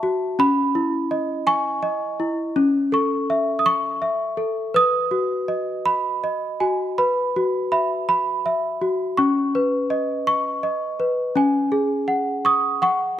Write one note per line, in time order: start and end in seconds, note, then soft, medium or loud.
0.00 0.40 F#4 medium
0.00 0.40 E5 medium
0.00 0.40 A5 medium
0.39 1.83 C#4 medium
0.39 1.43 B5 loud
0.75 2.18 E4 medium
1.11 1.81 D#5 medium
1.47 2.24 G#5 medium
1.47 2.56 C#6 medium
1.83 2.56 D#5 medium
2.20 2.56 E4 medium
2.56 4.02 C#4 medium
2.92 4.36 A4 medium
2.92 3.61 C#6 medium
3.30 4.01 E5 medium
3.59 3.66 D#6 medium
3.66 4.75 C#6 medium
4.02 4.75 E5 medium
4.37 4.74 A4 medium
4.74 6.24 B4 medium
4.74 6.58 D#6 medium
5.11 6.59 F#4 medium
5.48 6.22 D#5 medium
5.86 6.97 B5 medium
6.24 6.99 D#5 medium
6.60 6.99 F#4 medium
6.60 6.78 G#5 medium
6.98 8.46 B4 medium
6.98 7.71 B5 medium
7.36 8.80 F#4 medium
7.72 8.45 E5 medium
7.72 7.89 B5 medium
8.09 9.14 B5 medium
8.46 9.18 E5 medium
8.81 9.18 F#4 medium
9.17 10.63 C#4 medium
9.17 10.23 C#6 medium
9.55 10.98 B4 medium
9.90 10.62 D#5 medium
10.27 11.36 C#6 medium
10.63 11.36 D#5 medium
11.00 11.36 B4 medium
11.36 12.82 C#4 medium
11.36 12.49 G#5 medium
11.72 13.17 G#4 medium
12.08 12.81 F#5 medium
12.45 12.81 C#6 medium
12.45 12.83 D#6 medium
12.82 13.20 F#5 medium
12.82 12.99 C#6 medium